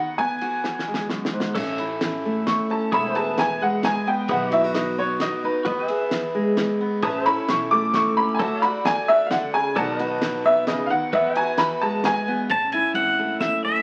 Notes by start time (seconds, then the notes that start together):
Already playing: D#3 B3 D#4 F#4 F#5
0.18 E2 B3 G#5, kick, ride
0.41 F#4, ride
0.64 E3, snare
0.79 snare
0.88 G#3
0.94 snare
1.09 F#2, snare
1.25 snare
1.33 G#2
1.40 snare
1.55 A1 A2 C#4 A4 C#5 E5, kick, crash
1.78 E4, ride
2.01 E3, snare, ride
2.25 A3
2.47 E2 C#6, snare, ride
2.70 C#4 A5
2.92 E1 E2 B3 G#4 C#5 E5 B5, kick, ride
3.15 G#4 B4 A5, ride
3.38 E3 G#5, snare, ride
3.61 G#3 F#5
3.83 B2 G#5, snare, ride
4.07 B3 G5
4.28 B1 B2 D#3 B3 D#4 F#4 G#4 B4 E5 F#5, kick, ride
4.51 E4 F#4 D#5 E5, ride
4.64 F#4
4.75 D#3 D#5, snare, ride
4.98 B3 C#5
5.20 F#2 D#5, snare, ride
5.44 D#4 B4
5.65 E2 B3 F#4 B4 D#5, kick, ride
5.87 G#4 E5, ride
6.11 E3, snare, ride
6.35 G#3
6.57 B2, snare, ride
6.81 B3
7.02 A1 A2 C#4 G#4 B4 E5 A5, kick, ride
7.23 E4 A4 B5, ride
7.29 C#5
7.48 B1 E3 C#6, snare, ride
7.71 A3 D6
7.93 C#2 E2 C#6, snare, ride
8.17 C#4 B5
8.34 G#5
8.39 D2 D3 F#4 A4 C#5 E5 A5, kick, ride
8.61 F#4 D5 B5, ride
8.67 F#5
8.84 D2 A3 G#5, snare, ride
9.08 D4 E5
9.26 C#2 F5
9.31 D3 F#5, snare, ride
9.54 C#3 G#5
9.76 B1 B2 D#3 B3 D#4 F#4 A4 D5 F#5 A5, kick, ride
9.96 F#4 D#5, ride
10.01 B4
10.21 D#3, snare, ride
10.45 B3 E5
10.67 C#3 D#5, snare, ride
10.86 F5
10.90 D#3 F#5
11.13 E2 B3 B4 D#5 E5 F#5, kick, ride
11.33 F#4 E5 G#5, ride
11.40 G#5
11.58 E3 B5, snare, ride
11.82 G#3 A5
12.04 B2 G#5, snare, ride
12.28 B3
12.49 A1 A2 C#4 A5, kick, ride
12.72 E4 G#5, ride
12.94 G#1 E3 F#5, ride
13.19 A3
13.40 F#1 E2 E5, snare, ride
13.65 C#4 E5